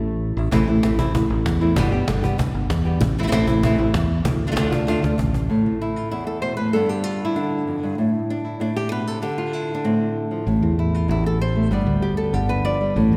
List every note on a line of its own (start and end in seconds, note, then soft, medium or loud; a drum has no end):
0.00 0.34 A1 medium
0.00 1.76 A2 medium
0.00 0.51 A3 medium
0.00 0.38 C4 soft
0.00 0.37 E4 medium
0.37 0.52 A1 medium
0.37 0.51 E4 soft
0.51 0.82 A1 loud
0.51 0.67 E3 medium
0.51 0.67 A3 medium
0.51 0.68 C4 medium
0.51 0.66 E4 medium
0.51 cajon bass loud
0.68 0.82 A3 soft
0.68 0.83 C4 soft
0.68 0.83 E4 medium
0.68 cajon slap soft
0.83 1.28 A1 medium
0.83 0.98 E3 medium
0.83 0.99 A3 medium
0.83 0.99 C4 medium
0.83 0.98 E4 medium
0.83 cajon slap medium
0.99 1.14 A3 medium
0.99 1.14 C4 medium
0.99 1.14 E4 medium
0.99 cajon bass medium
1.14 muted nylon-string guitar stroke medium
1.14 cajon bass medium
1.30 1.45 A1 medium
1.46 1.75 E2 medium
1.46 cajon bass medium
1.46 cajon slap loud
1.61 1.77 A3 soft
1.61 1.77 C4 medium
1.61 1.76 E4 medium
1.76 2.06 G1 loud
1.76 1.91 B2 medium
1.76 1.92 D3 medium
1.76 1.92 G3 medium
1.76 1.92 B3 loud
1.76 1.91 G4 medium
1.76 cajon bass loud
1.92 2.07 G3 soft
1.92 2.07 B3 medium
1.92 2.07 G4 medium
2.07 2.52 G1 medium
2.07 2.23 D3 medium
2.07 2.23 G3 medium
2.07 2.23 B3 medium
2.07 2.21 G4 medium
2.07 cajon slap loud
2.22 2.38 G3 soft
2.22 2.38 B3 medium
2.22 2.38 G4 medium
2.22 cajon bass medium
2.38 muted nylon-string guitar stroke medium
2.38 cajon bass loud
2.54 2.69 G1 medium
2.70 2.99 E2 medium
2.70 cajon bass medium
2.70 cajon slap medium
2.85 3.01 G3 soft
2.85 3.01 B3 soft
2.85 3.00 G4 medium
2.85 cajon slap soft
3.01 3.30 A1 loud
3.01 muted nylon-string guitar stroke medium
3.01 cajon bass loud
3.17 3.22 E3 medium
3.17 3.22 A3 medium
3.17 3.22 C4 medium
3.17 3.23 E4 medium
3.17 cajon slap soft
3.23 3.26 E3 medium
3.23 3.27 A3 medium
3.23 3.27 C4 medium
3.23 3.27 E4 medium
3.27 3.31 E3 medium
3.27 3.31 A3 medium
3.27 3.31 C4 medium
3.27 3.32 E4 medium
3.32 3.76 A1 medium
3.32 3.47 E3 medium
3.32 3.47 A3 medium
3.32 3.47 C4 medium
3.32 3.46 E4 medium
3.32 cajon slap loud
3.47 3.63 A3 soft
3.47 3.63 C4 medium
3.47 3.63 E4 medium
3.47 cajon bass medium
3.63 3.78 E3 medium
3.63 3.79 A3 medium
3.63 3.78 C4 medium
3.63 3.77 E4 loud
3.63 cajon bass medium
3.78 3.93 A1 medium
3.78 3.93 A3 soft
3.78 3.93 C4 soft
3.78 3.93 E4 medium
3.94 4.23 E2 medium
3.94 muted nylon-string guitar stroke medium
3.94 cajon bass medium
3.94 cajon slap loud
4.10 cajon slap soft
4.25 4.55 D2 medium
4.25 muted nylon-string guitar stroke medium
4.25 cajon bass loud
4.41 cajon slap soft
4.47 4.50 D3 soft
4.47 4.51 A3 medium
4.47 4.51 D4 medium
4.47 4.52 F4 medium
4.52 4.55 D3 medium
4.52 4.55 A3 medium
4.52 4.55 D4 medium
4.52 4.56 F4 medium
4.56 5.01 D2 medium
4.56 4.71 D3 medium
4.56 4.71 A3 medium
4.56 4.71 D4 medium
4.56 4.70 F4 medium
4.56 cajon slap loud
4.71 4.86 A3 medium
4.71 4.87 D4 medium
4.71 4.86 F4 medium
4.71 cajon bass medium
4.87 5.02 D3 medium
4.87 5.03 A3 medium
4.87 5.02 D4 loud
4.87 5.01 F4 loud
4.87 cajon slap medium
5.02 5.18 D2 loud
5.02 5.17 A3 soft
5.02 5.17 D4 medium
5.02 5.18 F4 medium
5.02 cajon slap medium
5.18 5.48 A1 medium
5.18 muted nylon-string guitar stroke medium
5.18 cajon bass medium
5.34 cajon bass medium
5.50 6.12 A2 medium
5.66 6.73 C4 soft
5.81 6.10 E4 medium
5.96 6.12 F4 medium
6.11 6.74 E2 medium
6.11 6.26 E4 medium
6.27 6.41 A4 medium
6.42 6.58 B2 medium
6.42 6.56 C5 loud
6.57 6.74 A2 medium
6.57 6.73 B4 loud
6.73 7.67 G2 medium
6.73 7.34 D3 medium
6.73 7.97 B3 medium
6.73 7.04 D4 medium
6.73 6.89 A4 loud
6.89 7.24 G4 medium
7.04 7.36 F4 medium
7.25 7.67 E4 medium
7.36 7.96 D3 medium
7.36 7.98 D4 medium
7.67 7.83 F2 medium
7.83 7.98 G2 medium
7.98 8.59 A2 medium
8.30 8.60 D4 medium
8.44 8.76 E4 medium
8.60 9.21 A2 medium
8.60 9.08 D4 loud
8.76 8.91 G4 loud
8.91 9.07 B2 medium
8.91 9.07 B4 loud
9.07 9.22 C3 medium
9.07 9.22 A4 loud
9.22 10.45 D3 medium
9.22 9.53 G4 loud
9.38 9.74 F4 medium
9.53 10.05 E4 medium
9.75 10.16 D4 medium
9.84 10.45 A2 medium
9.84 10.47 C4 medium
10.31 10.45 F3 medium
10.47 10.62 A1 medium
10.47 11.09 A2 medium
10.62 11.07 E2 medium
10.62 11.70 C4 soft
10.79 11.09 E4 medium
10.94 11.10 F4 medium
11.08 11.68 A1 loud
11.08 11.71 E2 medium
11.08 11.26 E4 medium
11.26 11.41 A4 medium
11.41 11.72 C5 medium
11.56 11.70 A3 medium
11.71 11.86 G1 medium
11.71 12.80 G3 medium
11.71 12.64 B3 medium
11.71 12.01 G4 medium
11.71 12.63 D5 medium
11.87 12.31 D2 medium
12.02 12.17 G4 medium
12.17 12.34 A4 medium
12.33 12.92 G1 medium
12.33 12.94 D3 medium
12.33 12.49 G4 medium
12.49 12.96 B4 medium
12.65 12.80 F3 medium
12.65 12.96 D5 loud
12.81 12.96 G3 medium
12.96 13.11 A1 medium
12.96 13.17 A2 medium
13.12 13.17 E2 medium
13.12 13.17 C4 medium